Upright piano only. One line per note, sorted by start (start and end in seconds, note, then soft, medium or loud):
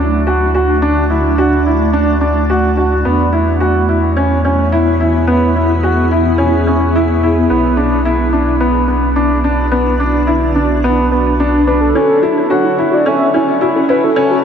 0.00 0.19 D4 medium
0.27 0.47 F#4 medium
0.55 0.75 F#4 medium
0.82 1.02 D4 medium
1.10 1.30 E4 medium
1.38 1.58 F#4 medium
1.66 1.86 E4 medium
1.93 2.13 D4 medium
2.21 2.41 D4 medium
2.50 2.70 F#4 medium
2.77 2.97 F#4 medium
3.05 3.25 B3 medium
3.33 3.53 E4 medium
3.60 3.80 F#4 medium
3.89 4.09 E4 medium
4.17 4.36 C#4 medium
4.45 4.64 C#4 medium
4.72 4.92 E4 medium
5.01 5.20 E4 medium
5.27 5.47 B3 medium
5.56 5.75 E4 medium
5.83 6.03 F#4 medium
6.11 6.31 E4 medium
6.38 6.58 C#4 medium
6.67 6.87 C#4 medium
6.96 7.15 E4 medium
7.23 7.43 E4 medium
7.50 7.70 B3 medium
7.77 7.97 D4 medium
8.05 8.25 E4 medium
8.33 8.53 D4 medium
8.60 8.81 B3 medium
8.88 9.08 B3 medium
9.16 9.36 D4 medium
9.44 9.64 D4 medium
9.72 9.92 B3 medium
10.00 10.20 D4 medium
10.27 10.47 E4 medium
10.56 10.75 D4 medium
10.84 11.04 B3 medium
11.12 11.31 B3 medium
11.40 11.59 D4 medium
11.67 11.87 D4 medium
11.95 12.15 C#4 medium
12.23 12.42 E4 medium
12.50 12.70 F#4 medium
12.78 12.98 E4 medium
13.06 13.26 C#4 medium
13.34 13.54 C#4 medium
13.61 13.81 E4 medium
13.89 14.09 E4 medium
14.16 14.36 C#4 medium